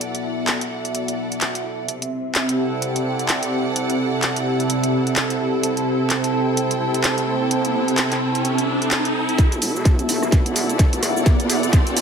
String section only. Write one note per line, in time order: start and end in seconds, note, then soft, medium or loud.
0.00 1.89 E4 medium
0.00 1.89 A4 medium
0.00 1.89 D5 medium
0.00 1.89 F#5 medium
1.88 9.39 C3 medium
2.35 12.01 E4 medium
2.50 6.22 F#5 medium
2.55 12.01 A4 medium
2.55 5.65 D5 medium
5.53 9.39 C5 medium
6.07 9.39 G5 medium
10.31 12.01 D5 medium
10.37 12.01 F#5 medium